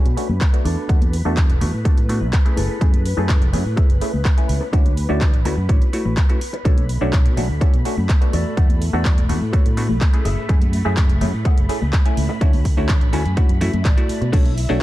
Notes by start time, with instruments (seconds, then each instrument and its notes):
Already playing: clav A3 C#4 D4 F#4, string machine B4 B5
0.06 fingered electric bass B2, closed hi-hat
0.17 clav A3 C#4 D4 F#4, muted clean electric guitar stroke, open hi-hat, tambourine
0.29 fingered electric bass F#2, tambourine, high conga
0.41 kick, clap, closed hi-hat
0.53 clav A3 B3 D4 F#4, closed hi-hat
0.65 fingered electric bass E2, clean electric guitar D4 F#4 A4, open hi-hat
0.78 tambourine
0.89 fingered electric bass E2, clav A3 B3 D4 F#4, kick, closed hi-hat
1.01 closed hi-hat, high conga
1.13 open hi-hat, tambourine
1.25 fingered electric bass E2, clav A3 B3 D4 F#4, clean electric guitar D4 F#4 A4
1.37 kick, clap, closed hi-hat
1.49 fingered electric bass E1, closed hi-hat
1.61 fingered electric bass E2, clav A3 B3 D4 F#4, open hi-hat, tambourine, high conga
1.74 fingered electric bass A2, tambourine
1.85 clav A3 B3 D4 F#4, clean electric guitar D4 F#4 A4, kick, closed hi-hat
1.97 fingered electric bass A2, closed hi-hat
2.09 clav A3 B3 D4 F#4, muted clean electric guitar stroke, open hi-hat, tambourine
2.21 fingered electric bass B1, tambourine, high conga
2.33 kick, clap, closed hi-hat, tambourine
2.45 clav A3 C#4 E4 G#4, closed hi-hat
2.57 fingered electric bass F#1, clean electric guitar E4 G#4 A4, open hi-hat, tambourine
2.70 tambourine
2.81 fingered electric bass F#2, clav A3 C#4 E4 G#4, kick, closed hi-hat
2.93 closed hi-hat, high conga
3.05 open hi-hat, tambourine
3.17 fingered electric bass F#2, clav A3 C#4 E4 G#4, clean electric guitar E4 G#4 A4, tambourine
3.29 kick, clap, closed hi-hat
3.42 fingered electric bass F#1, closed hi-hat
3.53 fingered electric bass F#2, clav A3 C#4 E4 G#4, open hi-hat, tambourine, high conga
3.65 fingered electric bass A2, tambourine
3.76 clav A3 C#4 E4 G#4, clean electric guitar E4 G#4 B4, muted fingered electric bass stroke, kick, closed hi-hat
3.90 fingered electric bass F#1, closed hi-hat
4.01 clav A3 C#4 E4 G#4, muted clean electric guitar stroke, open hi-hat, tambourine
4.13 fingered electric bass C#2, tambourine, high conga
4.25 kick, clap, closed hi-hat
4.37 clav A3 C#4 E4 G#5, closed hi-hat
4.49 fingered electric bass C#2, open hi-hat, tambourine
4.61 muted clean electric guitar stroke, tambourine
4.73 fingered electric bass D2, clav A3 C#4 E4 F#4, clean electric guitar D4 F#4 C#5, kick, closed hi-hat
4.86 closed hi-hat, high conga
4.96 open hi-hat, tambourine
5.09 fingered electric bass D2, clav A3 C#4 E4 F#4, clean electric guitar D4 F#4 D5, tambourine
5.21 kick, clap, closed hi-hat
5.34 fingered electric bass A1, closed hi-hat
5.45 fingered electric bass D2, clav A3 C#4 E4 F#4, open hi-hat, tambourine, high conga
5.57 fingered electric bass F#2, tambourine
5.69 fingered electric bass A1, clav A3 C#4 E4 F#4, clean electric guitar D4 F#4 C#5, kick, closed hi-hat
5.82 closed hi-hat
5.93 clav A3 E4 F#4 C#5, muted clean electric guitar stroke, open hi-hat, tambourine
6.05 fingered electric bass A1, tambourine, high conga
6.17 kick, clap, closed hi-hat
6.29 clav A3 C#4 E4 F#4, closed hi-hat
6.41 open hi-hat, tambourine
6.53 muted clean electric guitar stroke, closed hi-hat, tambourine
6.65 fingered electric bass B1, clav A3 C#4 D4 F#4, string machine A3 B5, clean electric guitar D4 A4 C#5, kick, closed hi-hat
6.78 closed hi-hat, high conga
6.89 open hi-hat, tambourine
7.01 fingered electric bass B1, clav A3 C#4 D4 F#4, clean electric guitar D4 A4 C#5, tambourine
7.13 kick, clap, closed hi-hat
7.26 fingered electric bass B2, closed hi-hat
7.37 fingered electric bass B1, clav A3 C#4 D4 F#4, open hi-hat, tambourine, high conga
7.49 fingered electric bass D2, tambourine
7.61 clav A3 C#4 D4 F#4, clean electric guitar D4 A4 C#5, muted fingered electric bass stroke, kick, closed hi-hat
7.74 fingered electric bass B2, closed hi-hat
7.85 clav A3 C#4 D4 F#4, muted clean electric guitar stroke, open hi-hat, tambourine
7.97 fingered electric bass F#2, tambourine, high conga
8.09 kick, clap, closed hi-hat
8.21 clav A3 B3 D4 F#4, closed hi-hat
8.33 fingered electric bass E2, clean electric guitar F#4 A4 D5, open hi-hat, tambourine
8.46 tambourine
8.57 fingered electric bass E2, clav A3 B3 D4 F#4, kick, closed hi-hat
8.69 closed hi-hat, high conga
8.81 open hi-hat, tambourine
8.93 fingered electric bass E2, clav A3 B3 D4 F#4, clean electric guitar F#4 A4 D5, tambourine
9.05 kick, clap, closed hi-hat
9.17 fingered electric bass E1, closed hi-hat
9.29 fingered electric bass E2, clav A3 B3 D4 F#4, open hi-hat, tambourine, high conga
9.41 fingered electric bass A2, tambourine
9.53 clav A3 B3 D4 F#4, clean electric guitar F#4 A4 C#5, kick, closed hi-hat
9.65 fingered electric bass A2, closed hi-hat
9.77 clav A3 B3 D4 F#4, muted clean electric guitar stroke, open hi-hat, tambourine
9.89 fingered electric bass B1, tambourine, high conga
10.01 kick, clap, closed hi-hat
10.13 clav A3 C#4 E4 G#4, closed hi-hat
10.25 fingered electric bass F#1, clean electric guitar G#4 A4 E5, open hi-hat, tambourine
10.38 tambourine
10.49 fingered electric bass F#2, clav A3 C#4 E4 G#4, kick, closed hi-hat, tambourine
10.62 closed hi-hat, high conga
10.73 open hi-hat, tambourine
10.85 fingered electric bass F#2, clav A3 C#4 E4 G#4, clean electric guitar G#4 A4 E5, tambourine
10.97 kick, clap, closed hi-hat
11.10 fingered electric bass F#1, closed hi-hat
11.21 fingered electric bass F#2, clav A3 C#4 E4 G#4, open hi-hat, tambourine, high conga
11.34 fingered electric bass A2, tambourine
11.45 clav A3 C#4 E4 G#4, clean electric guitar G#4 A4 F#5, muted fingered electric bass stroke, kick, closed hi-hat
11.58 fingered electric bass F#1, closed hi-hat
11.69 clav A3 C#4 E4 G#4, muted clean electric guitar stroke, open hi-hat, tambourine
11.81 fingered electric bass C#2, tambourine, high conga
11.93 kick, clap, closed hi-hat
12.05 clav A3 C#4 E4 G#5, closed hi-hat
12.17 fingered electric bass C#2, open hi-hat, tambourine
12.29 muted clean electric guitar stroke, tambourine
12.41 fingered electric bass D2, clav A3 C#4 E4 F#4, clean electric guitar D4 F#4 C#5, kick, closed hi-hat
12.53 open hi-hat, high conga
12.65 kick, open hi-hat, tambourine
12.77 fingered electric bass D2, clav A3 C#4 E4 F#4, clean electric guitar D4 F#4 C#5, tambourine
12.89 kick, clap, closed hi-hat
13.01 fingered electric bass A1, closed hi-hat
13.13 fingered electric bass D2, clav A3 C#4 E4 F#4, clean electric guitar G#5, open hi-hat, tambourine, high conga
13.25 fingered electric bass F#2, closed hi-hat, tambourine
13.37 clav A3 C#4 E4 F#4, clean electric guitar D4 F#4 C#5 F#5, kick, closed hi-hat, tambourine
13.49 fingered electric bass F#2, closed hi-hat
13.61 clav A3 C#4 E4 F#4, clean electric guitar E5, muted clean electric guitar stroke, open hi-hat, tambourine, low conga
13.73 fingered electric bass F#2, closed hi-hat, tambourine, high conga
13.85 fingered electric bass A1, clean electric guitar D5, kick, clap, closed hi-hat
13.97 clav A3 E4 F#4, closed hi-hat
14.09 muted fingered electric bass stroke, open hi-hat, tambourine
14.21 fingered electric bass B2, muted clean electric guitar stroke, closed hi-hat, tambourine
14.32 fingered electric bass B1, clav A3 C#4 D4 F#4, clean electric guitar D4 A4 C#5, string machine E4 E5, kick, closed hi-hat, crash
14.46 closed hi-hat, high conga
14.58 open hi-hat, tambourine
14.69 fingered electric bass B1, clav A3 C#4 D4 F#4, clean electric guitar D4 A4 C#5, tambourine